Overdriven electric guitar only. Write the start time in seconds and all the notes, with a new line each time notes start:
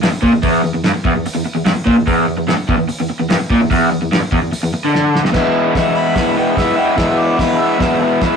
0.03 G2
0.12 muted overdriven electric guitar stroke
0.22 A#2
0.33 E2
0.43 E2
0.64 E2
0.74 E2
0.84 G2
0.95 muted overdriven electric guitar stroke
1.05 E2
1.15 E2
1.27 muted overdriven electric guitar stroke
1.35 E2
1.46 muted overdriven electric guitar stroke
1.55 E2
1.66 G2
1.76 muted overdriven electric guitar stroke
1.86 A#2
1.97 E2
2.06 E2
2.28 E2
2.38 E2
2.48 G2
2.57 muted overdriven electric guitar stroke
2.69 E2
2.78 E2
2.89 muted overdriven electric guitar stroke
3.00 E2
3.10 muted overdriven electric guitar stroke
3.20 E2
3.30 G2
3.40 muted overdriven electric guitar stroke
3.51 A#2
3.62 E2
3.71 E2
3.92 E2
4.02 E2
4.12 G2
4.23 muted overdriven electric guitar stroke
4.32 E2
4.42 E2
4.52 muted overdriven electric guitar stroke
4.63 E2
4.74 muted overdriven electric guitar stroke
4.85 D3
5.24 G2
5.32 E2 B2 E3 G#3 B3
5.36 E4
5.74 E3 G#3 B3 E4
6.15 E2 B2 E3 G#3 B3 E4
6.36 E3 G#3 B3 E4
6.55 E3 G#3 B3 E4
6.76 E3 G#3 B3 E4
6.96 E2 B2 E3 G#3 B3 E4
7.37 E3 G#3 B3 E4
7.78 E2 B2 E3 G#3 B3 E4
8.00 E3 G#3 B3 E4
8.22 E3 G#3 B3 E4